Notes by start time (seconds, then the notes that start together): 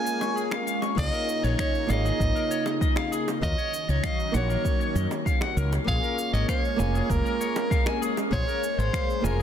Already playing: G#3 A#3 C#4 F4 G#4 G#5
0.06 G#5, cabasa
0.21 C#6, high bongo, cabasa
0.36 G#4, cabasa
0.51 F5, finger snap, high bongo, cabasa
0.67 F5, cabasa
0.82 C#6, high bongo, cabasa
0.95 C#2 C#3 A#3 D#4 F4 G#4 D#5, kick, crash, cabasa
0.99 G#4 C#5
1.13 A#4, cabasa
1.29 cabasa
1.43 A#1 C#5, cabasa
1.59 C#5 D#5, finger snap, kick, cabasa
1.75 cabasa
1.87 G#1 A#3 D#4 F4 D#5 F5, high bongo, cabasa
1.91 G#4 C#5
2.05 G#4, cabasa
2.20 G#1, kick, cabasa
2.35 A#4, cabasa
2.51 C#5, cabasa
2.66 high bongo, cabasa
2.81 D#5, kick, cabasa
2.96 F5, finger snap, high bongo, cabasa
3.12 G#4, cabasa
3.28 high bongo, cabasa
3.41 D#2 D#3 F#3 A#3 C#4 D#4 F4 F#4 A#4 C#5 D#5, kick, cabasa
3.58 C#5, cabasa
3.74 cabasa
3.89 C#2 C#5 D#5, cabasa
4.04 D#5 F5, finger snap, kick, cabasa
4.20 cabasa
4.32 A#1 A#3 D#4 F#5, high bongo, cabasa
4.36 F#4 C#5
4.50 A#4, cabasa
4.65 kick, cabasa
4.80 C#5, cabasa
4.95 F#2 D#5, cabasa
5.11 high bongo, cabasa
5.26 F5, kick, cabasa
5.41 F#5, finger snap, high bongo, cabasa
5.57 C#2 A#4, cabasa
5.72 high bongo, cabasa
5.84 A#1 G#3 A#3 C#4 F4 G#4 F5, kick, cabasa
5.89 G#4
6.03 A#4, cabasa
6.19 cabasa
6.33 G#1 C#5 D#5, cabasa
6.48 C#5 F5, finger snap, kick, cabasa
6.65 cabasa
6.76 F1 A#3 C#4 F4 G#5, high bongo, cabasa
6.81 G#4
6.95 G#4, cabasa
7.10 F1 A#4, kick, cabasa
7.25 A#4, cabasa
7.41 C#5, cabasa
7.56 high bongo, cabasa
7.71 F5, kick, cabasa
7.86 G#5, finger snap, high bongo, cabasa
8.02 G#4, cabasa
8.17 high bongo, cabasa
8.31 A#1 A#3 C#4 F4 G#4 C5 C#5, kick, cabasa
8.48 A#4, cabasa
8.64 cabasa
8.78 G#1 C5 C#5, cabasa
8.93 F5, finger snap, kick, cabasa
9.10 cabasa
9.21 F1 A#3 C#4 F4 G#4 A#4 G#5, high bongo, cabasa